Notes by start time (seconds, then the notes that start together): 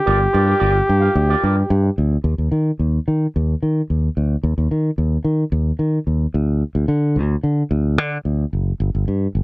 Already playing: G4
0.05 G1 F4 A#4 D5
0.19 muted clean electric guitar stroke
0.33 G2 F4 A#4 D5
0.46 F4 A#4 D5
0.59 G1 F4 A#4 D5
0.73 muted clean electric guitar stroke
0.87 G2, muted clean electric guitar stroke
1.00 F4 A#4 F5
1.15 D2, muted clean electric guitar stroke
1.29 F4 A#4 D5
1.43 G2 F4 A#4 D5
1.57 muted clean electric guitar stroke
1.70 G2, muted clean electric guitar stroke
1.83 muted clean electric guitar stroke
1.98 D2
2.11 muted clean electric guitar stroke
2.24 D#2
2.38 D#2
2.52 D#3
2.79 D#2
3.08 D#3
3.36 D#2
3.63 D#3
3.90 D#2
4.17 D2
4.43 D#2
4.58 D#2
4.71 D#3
4.98 D#2
5.25 D#3
5.52 D#2
5.79 D#3
6.07 D#2
6.34 D2
6.75 D2
6.88 D3
7.16 D2
7.43 D3
7.71 D2
7.98 D3
8.25 D2
8.53 F#1
8.80 G1
8.95 G1
9.08 G2
9.35 G1